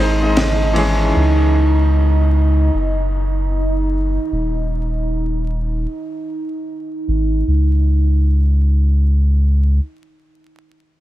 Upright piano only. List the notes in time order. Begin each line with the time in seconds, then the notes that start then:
Already playing: G#3 C4 D#4
0.00 C5
0.18 G#3 C4 D#4
0.23 D#5
0.73 E3 G#3 C#4
0.78 G#4